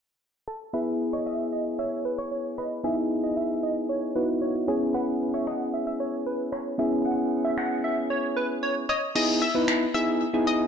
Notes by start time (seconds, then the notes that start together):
0.48 A4
0.73 B3 E4 G#4 B4 E5
1.13 C#5 D#5
1.26 D#5 E5
1.52 D#5
1.79 C#5 E5
2.05 B4
2.18 C#5
2.32 C#5
2.58 B4 D#5
2.84 B3 D#4 E4 G#4 E5
3.24 D#5
3.37 E5
3.63 D#5
3.89 C#5
4.15 B3 D#4 E4 F#4 B4
4.42 C#5
4.68 B3 C#4 E4 G#4 C#5
4.94 B4 F#5
5.34 C#5 E5
5.47 D#5 F#5, finger snap
5.74 E5
5.87 E5
6.00 C#5
6.26 B4
6.52 C#5, finger snap
6.78 B3 C#4 E4 G#4 E5
7.05 F#5
7.45 E5
7.58 F#5, finger snap
7.84 E5
8.10 C#5
8.37 B4
8.63 C#5
8.89 C#5 D#5
9.15 B3 D#4 E4 G#4 D#5, crash
9.42 E5
9.55 B3 D#4 E4 B4
9.68 finger snap
9.94 B3 D#4 E4 G#4 E5
10.34 B3 D#4 E4 G#4
10.47 D#5